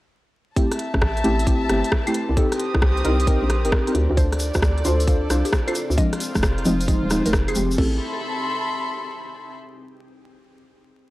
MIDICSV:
0, 0, Header, 1, 7, 480
1, 0, Start_track
1, 0, Key_signature, 0, "minor"
1, 0, Tempo, 451128
1, 601, Time_signature, 4, 2, 24, 8
1, 11811, End_track
2, 0, Start_track
2, 0, Title_t, "String section"
2, 0, Program_c, 0, 48
2, 601, Note_on_c, 0, 81, 94
2, 805, Note_on_c, 0, 76, 92
2, 2280, Note_off_c, 0, 76, 0
2, 2282, Note_on_c, 0, 60, 92
2, 2382, Note_on_c, 0, 67, 97
2, 2750, Note_on_c, 0, 87, 87
2, 3065, Note_off_c, 0, 81, 0
2, 4197, Note_on_c, 0, 74, 82
2, 4202, Note_off_c, 0, 87, 0
2, 4346, Note_on_c, 0, 69, 76
2, 5098, Note_off_c, 0, 60, 0
2, 5098, Note_off_c, 0, 67, 0
2, 6359, Note_on_c, 0, 65, 84
2, 6361, Note_off_c, 0, 69, 0
2, 6561, Note_on_c, 0, 72, 83
2, 7143, Note_off_c, 0, 74, 0
2, 8280, Note_off_c, 0, 65, 0
2, 8281, Note_off_c, 0, 72, 0
2, 8283, Note_on_c, 0, 69, 81
2, 8377, Note_on_c, 0, 76, 81
2, 8458, Note_on_c, 0, 83, 83
2, 8507, Note_on_c, 0, 84, 81
2, 10159, Note_off_c, 0, 76, 0
2, 10159, Note_off_c, 0, 83, 0
2, 10159, Note_off_c, 0, 84, 0
2, 10160, Note_off_c, 0, 69, 0
2, 11811, End_track
3, 0, Start_track
3, 0, Title_t, "Synth pluck"
3, 0, Program_c, 1, 84
3, 4439, Note_on_c, 1, 72, 100
3, 4610, Note_off_c, 1, 72, 0
3, 5798, Note_on_c, 1, 67, 91
3, 5900, Note_off_c, 1, 67, 0
3, 6039, Note_on_c, 1, 69, 93
3, 6230, Note_off_c, 1, 69, 0
3, 6359, Note_on_c, 1, 75, 102
3, 6530, Note_off_c, 1, 75, 0
3, 7723, Note_on_c, 1, 70, 90
3, 7822, Note_off_c, 1, 70, 0
3, 7962, Note_on_c, 1, 68, 96
3, 8152, Note_off_c, 1, 68, 0
3, 8281, Note_on_c, 1, 69, 94
3, 8475, Note_off_c, 1, 69, 0
3, 11811, End_track
4, 0, Start_track
4, 0, Title_t, "Ambient pad"
4, 0, Program_c, 2, 92
4, 602, Note_on_c, 2, 64, 74
4, 602, Note_on_c, 2, 67, 76
4, 602, Note_on_c, 2, 71, 91
4, 603, Note_on_c, 2, 60, 84
4, 2265, Note_off_c, 2, 60, 0
4, 2265, Note_off_c, 2, 64, 0
4, 2265, Note_off_c, 2, 71, 0
4, 2281, Note_on_c, 2, 62, 84
4, 2281, Note_on_c, 2, 70, 93
4, 2282, Note_on_c, 2, 63, 76
4, 4165, Note_off_c, 2, 67, 0
4, 4182, Note_off_c, 2, 62, 0
4, 4182, Note_off_c, 2, 63, 0
4, 4182, Note_off_c, 2, 70, 0
4, 4200, Note_on_c, 2, 64, 76
4, 4200, Note_on_c, 2, 65, 77
4, 4201, Note_on_c, 2, 60, 84
4, 4201, Note_on_c, 2, 69, 93
4, 6339, Note_off_c, 2, 64, 0
4, 6339, Note_off_c, 2, 65, 0
4, 6339, Note_off_c, 2, 69, 0
4, 6359, Note_on_c, 2, 67, 75
4, 6359, Note_on_c, 2, 68, 90
4, 6360, Note_on_c, 2, 63, 78
4, 8240, Note_off_c, 2, 60, 0
4, 8261, Note_off_c, 2, 63, 0
4, 8261, Note_off_c, 2, 67, 0
4, 8261, Note_off_c, 2, 68, 0
4, 11811, End_track
5, 0, Start_track
5, 0, Title_t, "Synth stab"
5, 0, Program_c, 3, 62
5, 600, Note_on_c, 3, 57, 85
5, 600, Note_on_c, 3, 60, 76
5, 600, Note_on_c, 3, 64, 76
5, 600, Note_on_c, 3, 67, 90
5, 701, Note_off_c, 3, 57, 0
5, 701, Note_off_c, 3, 60, 0
5, 701, Note_off_c, 3, 64, 0
5, 701, Note_off_c, 3, 67, 0
5, 1321, Note_on_c, 3, 57, 93
5, 1321, Note_on_c, 3, 60, 84
5, 1321, Note_on_c, 3, 64, 86
5, 1321, Note_on_c, 3, 67, 102
5, 1482, Note_off_c, 3, 57, 0
5, 1482, Note_off_c, 3, 60, 0
5, 1482, Note_off_c, 3, 64, 0
5, 1482, Note_off_c, 3, 67, 0
5, 1560, Note_on_c, 3, 57, 79
5, 1560, Note_on_c, 3, 60, 72
5, 1560, Note_on_c, 3, 64, 72
5, 1561, Note_on_c, 3, 67, 85
5, 1781, Note_off_c, 3, 57, 0
5, 1781, Note_off_c, 3, 60, 0
5, 1781, Note_off_c, 3, 64, 0
5, 1782, Note_off_c, 3, 67, 0
5, 1801, Note_on_c, 3, 57, 83
5, 1801, Note_on_c, 3, 60, 77
5, 1801, Note_on_c, 3, 64, 78
5, 1801, Note_on_c, 3, 67, 94
5, 1961, Note_off_c, 3, 57, 0
5, 1961, Note_off_c, 3, 60, 0
5, 1961, Note_off_c, 3, 64, 0
5, 1961, Note_off_c, 3, 67, 0
5, 2200, Note_on_c, 3, 57, 80
5, 2200, Note_on_c, 3, 60, 76
5, 2200, Note_on_c, 3, 64, 74
5, 2200, Note_on_c, 3, 67, 91
5, 2251, Note_off_c, 3, 57, 0
5, 2251, Note_off_c, 3, 60, 0
5, 2251, Note_off_c, 3, 64, 0
5, 2251, Note_off_c, 3, 67, 0
5, 2520, Note_on_c, 3, 60, 91
5, 2520, Note_on_c, 3, 63, 80
5, 2520, Note_on_c, 3, 67, 84
5, 2520, Note_on_c, 3, 69, 97
5, 2621, Note_off_c, 3, 60, 0
5, 2621, Note_off_c, 3, 63, 0
5, 2621, Note_off_c, 3, 67, 0
5, 2621, Note_off_c, 3, 69, 0
5, 3240, Note_on_c, 3, 60, 99
5, 3240, Note_on_c, 3, 63, 90
5, 3240, Note_on_c, 3, 67, 92
5, 3240, Note_on_c, 3, 70, 108
5, 3341, Note_off_c, 3, 60, 0
5, 3341, Note_off_c, 3, 63, 0
5, 3341, Note_off_c, 3, 67, 0
5, 3341, Note_off_c, 3, 70, 0
5, 3479, Note_on_c, 3, 67, 83
5, 3479, Note_on_c, 3, 70, 102
5, 3480, Note_on_c, 3, 60, 93
5, 3480, Note_on_c, 3, 63, 85
5, 3641, Note_off_c, 3, 60, 0
5, 3641, Note_off_c, 3, 63, 0
5, 3641, Note_off_c, 3, 67, 0
5, 3641, Note_off_c, 3, 70, 0
5, 3880, Note_on_c, 3, 60, 73
5, 3880, Note_on_c, 3, 63, 71
5, 3880, Note_on_c, 3, 67, 70
5, 3880, Note_on_c, 3, 70, 83
5, 4082, Note_off_c, 3, 60, 0
5, 4082, Note_off_c, 3, 63, 0
5, 4082, Note_off_c, 3, 67, 0
5, 4082, Note_off_c, 3, 70, 0
5, 4119, Note_on_c, 3, 60, 82
5, 4119, Note_on_c, 3, 63, 71
5, 4119, Note_on_c, 3, 67, 74
5, 4119, Note_on_c, 3, 70, 90
5, 4170, Note_off_c, 3, 60, 0
5, 4170, Note_off_c, 3, 63, 0
5, 4170, Note_off_c, 3, 67, 0
5, 4170, Note_off_c, 3, 70, 0
5, 4439, Note_on_c, 3, 62, 85
5, 4439, Note_on_c, 3, 65, 77
5, 4439, Note_on_c, 3, 69, 76
5, 4440, Note_on_c, 3, 72, 90
5, 4541, Note_off_c, 3, 62, 0
5, 4541, Note_off_c, 3, 65, 0
5, 4541, Note_off_c, 3, 69, 0
5, 4541, Note_off_c, 3, 72, 0
5, 5159, Note_on_c, 3, 62, 96
5, 5159, Note_on_c, 3, 65, 85
5, 5159, Note_on_c, 3, 69, 86
5, 5159, Note_on_c, 3, 72, 107
5, 5321, Note_off_c, 3, 62, 0
5, 5321, Note_off_c, 3, 65, 0
5, 5321, Note_off_c, 3, 69, 0
5, 5321, Note_off_c, 3, 72, 0
5, 5399, Note_on_c, 3, 62, 79
5, 5399, Note_on_c, 3, 69, 74
5, 5399, Note_on_c, 3, 72, 87
5, 5400, Note_on_c, 3, 65, 73
5, 5621, Note_off_c, 3, 62, 0
5, 5621, Note_off_c, 3, 65, 0
5, 5621, Note_off_c, 3, 69, 0
5, 5621, Note_off_c, 3, 72, 0
5, 5639, Note_on_c, 3, 62, 86
5, 5639, Note_on_c, 3, 72, 93
5, 5640, Note_on_c, 3, 65, 77
5, 5640, Note_on_c, 3, 69, 80
5, 5801, Note_off_c, 3, 62, 0
5, 5801, Note_off_c, 3, 65, 0
5, 5801, Note_off_c, 3, 69, 0
5, 5801, Note_off_c, 3, 72, 0
5, 6040, Note_on_c, 3, 62, 80
5, 6040, Note_on_c, 3, 65, 73
5, 6040, Note_on_c, 3, 69, 73
5, 6040, Note_on_c, 3, 72, 91
5, 6091, Note_off_c, 3, 62, 0
5, 6091, Note_off_c, 3, 65, 0
5, 6091, Note_off_c, 3, 69, 0
5, 6091, Note_off_c, 3, 72, 0
5, 6360, Note_on_c, 3, 53, 90
5, 6360, Note_on_c, 3, 56, 83
5, 6360, Note_on_c, 3, 60, 85
5, 6360, Note_on_c, 3, 62, 102
5, 6461, Note_off_c, 3, 53, 0
5, 6461, Note_off_c, 3, 56, 0
5, 6461, Note_off_c, 3, 60, 0
5, 6461, Note_off_c, 3, 62, 0
5, 7080, Note_on_c, 3, 53, 103
5, 7080, Note_on_c, 3, 56, 93
5, 7080, Note_on_c, 3, 60, 93
5, 7080, Note_on_c, 3, 63, 111
5, 7181, Note_off_c, 3, 53, 0
5, 7181, Note_off_c, 3, 56, 0
5, 7181, Note_off_c, 3, 60, 0
5, 7181, Note_off_c, 3, 63, 0
5, 7320, Note_on_c, 3, 60, 84
5, 7320, Note_on_c, 3, 63, 101
5, 7321, Note_on_c, 3, 53, 94
5, 7321, Note_on_c, 3, 56, 86
5, 7481, Note_off_c, 3, 53, 0
5, 7481, Note_off_c, 3, 56, 0
5, 7481, Note_off_c, 3, 60, 0
5, 7481, Note_off_c, 3, 63, 0
5, 7560, Note_on_c, 3, 60, 84
5, 7560, Note_on_c, 3, 63, 100
5, 7561, Note_on_c, 3, 53, 93
5, 7561, Note_on_c, 3, 56, 87
5, 8021, Note_off_c, 3, 60, 0
5, 8021, Note_off_c, 3, 63, 0
5, 8022, Note_off_c, 3, 53, 0
5, 8022, Note_off_c, 3, 56, 0
5, 8041, Note_on_c, 3, 53, 80
5, 8041, Note_on_c, 3, 56, 72
5, 8041, Note_on_c, 3, 67, 87
5, 8042, Note_on_c, 3, 60, 71
5, 8262, Note_off_c, 3, 53, 0
5, 8262, Note_off_c, 3, 56, 0
5, 8262, Note_off_c, 3, 60, 0
5, 8262, Note_off_c, 3, 67, 0
5, 8280, Note_on_c, 3, 57, 84
5, 8280, Note_on_c, 3, 60, 79
5, 8280, Note_on_c, 3, 67, 95
5, 8281, Note_on_c, 3, 64, 79
5, 8474, Note_off_c, 3, 57, 0
5, 8474, Note_off_c, 3, 60, 0
5, 8474, Note_off_c, 3, 64, 0
5, 8474, Note_off_c, 3, 67, 0
5, 11811, End_track
6, 0, Start_track
6, 0, Title_t, "FM bass"
6, 0, Program_c, 4, 39
6, 1001, Note_on_c, 4, 33, 103
6, 1301, Note_off_c, 4, 33, 0
6, 1320, Note_on_c, 4, 33, 105
6, 1781, Note_off_c, 4, 33, 0
6, 1800, Note_on_c, 4, 31, 81
6, 1936, Note_off_c, 4, 31, 0
6, 2440, Note_on_c, 4, 36, 91
6, 2508, Note_off_c, 4, 36, 0
6, 2920, Note_on_c, 4, 36, 100
6, 3221, Note_off_c, 4, 36, 0
6, 3240, Note_on_c, 4, 36, 105
6, 3601, Note_off_c, 4, 36, 0
6, 3640, Note_on_c, 4, 34, 89
6, 3880, Note_on_c, 4, 31, 98
6, 3896, Note_off_c, 4, 34, 0
6, 3948, Note_off_c, 4, 31, 0
6, 4200, Note_on_c, 4, 38, 96
6, 4336, Note_off_c, 4, 38, 0
6, 4359, Note_on_c, 4, 38, 105
6, 4800, Note_off_c, 4, 38, 0
6, 4840, Note_on_c, 4, 38, 100
6, 5141, Note_off_c, 4, 38, 0
6, 5160, Note_on_c, 4, 38, 105
6, 5621, Note_off_c, 4, 38, 0
6, 5639, Note_on_c, 4, 36, 78
6, 5776, Note_off_c, 4, 36, 0
6, 6279, Note_on_c, 4, 38, 92
6, 6348, Note_off_c, 4, 38, 0
6, 6760, Note_on_c, 4, 29, 101
6, 7061, Note_off_c, 4, 29, 0
6, 7079, Note_on_c, 4, 29, 109
6, 7440, Note_off_c, 4, 29, 0
6, 7480, Note_on_c, 4, 27, 89
6, 7671, Note_off_c, 4, 27, 0
6, 7720, Note_on_c, 4, 29, 107
6, 8021, Note_off_c, 4, 29, 0
6, 8040, Note_on_c, 4, 29, 92
6, 8256, Note_off_c, 4, 29, 0
6, 8281, Note_on_c, 4, 33, 95
6, 8504, Note_off_c, 4, 33, 0
6, 11811, End_track
7, 0, Start_track
7, 0, Title_t, "Drums"
7, 601, Note_on_c, 9, 36, 121
7, 601, Note_on_c, 9, 42, 67
7, 707, Note_off_c, 9, 36, 0
7, 708, Note_off_c, 9, 42, 0
7, 761, Note_on_c, 9, 37, 54
7, 761, Note_on_c, 9, 42, 67
7, 842, Note_off_c, 9, 42, 0
7, 842, Note_on_c, 9, 42, 110
7, 868, Note_off_c, 9, 37, 0
7, 948, Note_off_c, 9, 42, 0
7, 1001, Note_on_c, 9, 36, 62
7, 1003, Note_on_c, 9, 37, 69
7, 1081, Note_off_c, 9, 36, 0
7, 1081, Note_on_c, 9, 36, 122
7, 1082, Note_off_c, 9, 37, 0
7, 1082, Note_on_c, 9, 37, 119
7, 1187, Note_off_c, 9, 36, 0
7, 1189, Note_off_c, 9, 37, 0
7, 1243, Note_on_c, 9, 42, 35
7, 1323, Note_off_c, 9, 42, 0
7, 1323, Note_on_c, 9, 42, 112
7, 1429, Note_off_c, 9, 42, 0
7, 1483, Note_on_c, 9, 42, 65
7, 1561, Note_on_c, 9, 36, 117
7, 1563, Note_off_c, 9, 42, 0
7, 1563, Note_on_c, 9, 42, 64
7, 1667, Note_off_c, 9, 36, 0
7, 1669, Note_off_c, 9, 42, 0
7, 1803, Note_on_c, 9, 37, 72
7, 1803, Note_on_c, 9, 42, 113
7, 1909, Note_off_c, 9, 37, 0
7, 1909, Note_off_c, 9, 42, 0
7, 1962, Note_on_c, 9, 42, 68
7, 2041, Note_on_c, 9, 36, 120
7, 2041, Note_on_c, 9, 37, 121
7, 2068, Note_off_c, 9, 42, 0
7, 2147, Note_off_c, 9, 36, 0
7, 2148, Note_off_c, 9, 37, 0
7, 2202, Note_on_c, 9, 42, 52
7, 2202, Note_on_c, 9, 75, 61
7, 2281, Note_off_c, 9, 42, 0
7, 2281, Note_on_c, 9, 42, 112
7, 2308, Note_off_c, 9, 75, 0
7, 2388, Note_off_c, 9, 42, 0
7, 2521, Note_on_c, 9, 36, 127
7, 2521, Note_on_c, 9, 42, 64
7, 2627, Note_off_c, 9, 36, 0
7, 2628, Note_off_c, 9, 42, 0
7, 2681, Note_on_c, 9, 37, 53
7, 2681, Note_on_c, 9, 42, 63
7, 2762, Note_off_c, 9, 42, 0
7, 2762, Note_on_c, 9, 42, 109
7, 2787, Note_off_c, 9, 37, 0
7, 2868, Note_off_c, 9, 42, 0
7, 2921, Note_on_c, 9, 36, 64
7, 2921, Note_on_c, 9, 37, 69
7, 3000, Note_off_c, 9, 36, 0
7, 3000, Note_on_c, 9, 36, 125
7, 3001, Note_off_c, 9, 37, 0
7, 3001, Note_on_c, 9, 37, 123
7, 3107, Note_off_c, 9, 36, 0
7, 3108, Note_off_c, 9, 37, 0
7, 3162, Note_on_c, 9, 42, 33
7, 3241, Note_off_c, 9, 42, 0
7, 3241, Note_on_c, 9, 42, 110
7, 3348, Note_off_c, 9, 42, 0
7, 3402, Note_on_c, 9, 42, 65
7, 3481, Note_off_c, 9, 42, 0
7, 3481, Note_on_c, 9, 36, 123
7, 3481, Note_on_c, 9, 42, 64
7, 3587, Note_off_c, 9, 36, 0
7, 3588, Note_off_c, 9, 42, 0
7, 3721, Note_on_c, 9, 37, 73
7, 3721, Note_on_c, 9, 42, 113
7, 3827, Note_off_c, 9, 37, 0
7, 3827, Note_off_c, 9, 42, 0
7, 3881, Note_on_c, 9, 42, 66
7, 3960, Note_on_c, 9, 37, 125
7, 3961, Note_on_c, 9, 36, 127
7, 3987, Note_off_c, 9, 42, 0
7, 4067, Note_off_c, 9, 36, 0
7, 4067, Note_off_c, 9, 37, 0
7, 4121, Note_on_c, 9, 42, 53
7, 4201, Note_off_c, 9, 42, 0
7, 4201, Note_on_c, 9, 42, 105
7, 4308, Note_off_c, 9, 42, 0
7, 4440, Note_on_c, 9, 36, 127
7, 4441, Note_on_c, 9, 42, 64
7, 4448, Note_on_c, 9, 82, 43
7, 4547, Note_off_c, 9, 36, 0
7, 4547, Note_off_c, 9, 42, 0
7, 4555, Note_off_c, 9, 82, 0
7, 4601, Note_on_c, 9, 37, 53
7, 4601, Note_on_c, 9, 42, 63
7, 4676, Note_on_c, 9, 82, 89
7, 4681, Note_off_c, 9, 42, 0
7, 4681, Note_on_c, 9, 42, 108
7, 4708, Note_off_c, 9, 37, 0
7, 4783, Note_off_c, 9, 82, 0
7, 4787, Note_off_c, 9, 42, 0
7, 4832, Note_on_c, 9, 82, 57
7, 4841, Note_on_c, 9, 36, 64
7, 4841, Note_on_c, 9, 37, 69
7, 4920, Note_off_c, 9, 36, 0
7, 4920, Note_on_c, 9, 36, 127
7, 4921, Note_off_c, 9, 37, 0
7, 4921, Note_on_c, 9, 37, 127
7, 4924, Note_off_c, 9, 82, 0
7, 4924, Note_on_c, 9, 82, 43
7, 5027, Note_off_c, 9, 36, 0
7, 5027, Note_off_c, 9, 37, 0
7, 5030, Note_off_c, 9, 82, 0
7, 5081, Note_on_c, 9, 42, 35
7, 5158, Note_on_c, 9, 82, 96
7, 5160, Note_off_c, 9, 42, 0
7, 5160, Note_on_c, 9, 42, 107
7, 5265, Note_off_c, 9, 82, 0
7, 5266, Note_off_c, 9, 42, 0
7, 5320, Note_on_c, 9, 42, 62
7, 5323, Note_on_c, 9, 82, 58
7, 5400, Note_off_c, 9, 42, 0
7, 5400, Note_off_c, 9, 82, 0
7, 5400, Note_on_c, 9, 36, 121
7, 5400, Note_on_c, 9, 42, 62
7, 5400, Note_on_c, 9, 82, 46
7, 5506, Note_off_c, 9, 36, 0
7, 5506, Note_off_c, 9, 42, 0
7, 5507, Note_off_c, 9, 82, 0
7, 5641, Note_on_c, 9, 37, 70
7, 5641, Note_on_c, 9, 42, 105
7, 5643, Note_on_c, 9, 82, 100
7, 5747, Note_off_c, 9, 37, 0
7, 5747, Note_off_c, 9, 42, 0
7, 5750, Note_off_c, 9, 82, 0
7, 5801, Note_on_c, 9, 42, 63
7, 5801, Note_on_c, 9, 82, 55
7, 5880, Note_on_c, 9, 36, 127
7, 5880, Note_on_c, 9, 37, 126
7, 5883, Note_off_c, 9, 82, 0
7, 5883, Note_on_c, 9, 82, 39
7, 5907, Note_off_c, 9, 42, 0
7, 5986, Note_off_c, 9, 36, 0
7, 5987, Note_off_c, 9, 37, 0
7, 5989, Note_off_c, 9, 82, 0
7, 6041, Note_on_c, 9, 42, 51
7, 6041, Note_on_c, 9, 75, 61
7, 6118, Note_on_c, 9, 82, 93
7, 6120, Note_off_c, 9, 42, 0
7, 6120, Note_on_c, 9, 42, 104
7, 6147, Note_off_c, 9, 75, 0
7, 6224, Note_off_c, 9, 82, 0
7, 6227, Note_off_c, 9, 42, 0
7, 6289, Note_on_c, 9, 82, 59
7, 6360, Note_on_c, 9, 36, 127
7, 6360, Note_on_c, 9, 42, 64
7, 6395, Note_off_c, 9, 82, 0
7, 6466, Note_off_c, 9, 36, 0
7, 6467, Note_off_c, 9, 42, 0
7, 6520, Note_on_c, 9, 37, 53
7, 6520, Note_on_c, 9, 42, 64
7, 6600, Note_off_c, 9, 42, 0
7, 6600, Note_on_c, 9, 42, 106
7, 6605, Note_on_c, 9, 82, 90
7, 6627, Note_off_c, 9, 37, 0
7, 6707, Note_off_c, 9, 42, 0
7, 6711, Note_off_c, 9, 82, 0
7, 6758, Note_on_c, 9, 82, 51
7, 6760, Note_on_c, 9, 36, 64
7, 6761, Note_on_c, 9, 37, 65
7, 6838, Note_off_c, 9, 82, 0
7, 6838, Note_on_c, 9, 82, 46
7, 6840, Note_off_c, 9, 36, 0
7, 6840, Note_on_c, 9, 36, 124
7, 6841, Note_off_c, 9, 37, 0
7, 6841, Note_on_c, 9, 37, 126
7, 6944, Note_off_c, 9, 82, 0
7, 6947, Note_off_c, 9, 36, 0
7, 6947, Note_off_c, 9, 37, 0
7, 7001, Note_on_c, 9, 42, 34
7, 7077, Note_on_c, 9, 82, 96
7, 7081, Note_off_c, 9, 42, 0
7, 7081, Note_on_c, 9, 42, 101
7, 7183, Note_off_c, 9, 82, 0
7, 7187, Note_off_c, 9, 42, 0
7, 7241, Note_on_c, 9, 42, 63
7, 7241, Note_on_c, 9, 82, 57
7, 7320, Note_on_c, 9, 36, 120
7, 7321, Note_off_c, 9, 42, 0
7, 7321, Note_on_c, 9, 42, 66
7, 7326, Note_off_c, 9, 82, 0
7, 7326, Note_on_c, 9, 82, 41
7, 7427, Note_off_c, 9, 36, 0
7, 7427, Note_off_c, 9, 42, 0
7, 7433, Note_off_c, 9, 82, 0
7, 7558, Note_on_c, 9, 82, 99
7, 7561, Note_on_c, 9, 37, 71
7, 7561, Note_on_c, 9, 42, 105
7, 7665, Note_off_c, 9, 82, 0
7, 7667, Note_off_c, 9, 37, 0
7, 7667, Note_off_c, 9, 42, 0
7, 7721, Note_on_c, 9, 42, 66
7, 7723, Note_on_c, 9, 82, 53
7, 7800, Note_on_c, 9, 37, 127
7, 7801, Note_on_c, 9, 36, 127
7, 7806, Note_off_c, 9, 82, 0
7, 7806, Note_on_c, 9, 82, 41
7, 7827, Note_off_c, 9, 42, 0
7, 7907, Note_off_c, 9, 36, 0
7, 7907, Note_off_c, 9, 37, 0
7, 7912, Note_off_c, 9, 82, 0
7, 7960, Note_on_c, 9, 42, 50
7, 7960, Note_on_c, 9, 75, 64
7, 8035, Note_on_c, 9, 82, 103
7, 8040, Note_off_c, 9, 42, 0
7, 8040, Note_on_c, 9, 42, 105
7, 8067, Note_off_c, 9, 75, 0
7, 8142, Note_off_c, 9, 82, 0
7, 8147, Note_off_c, 9, 42, 0
7, 8207, Note_on_c, 9, 82, 57
7, 8281, Note_on_c, 9, 36, 121
7, 8281, Note_on_c, 9, 49, 90
7, 8313, Note_off_c, 9, 82, 0
7, 8387, Note_off_c, 9, 36, 0
7, 8387, Note_off_c, 9, 49, 0
7, 11811, End_track
0, 0, End_of_file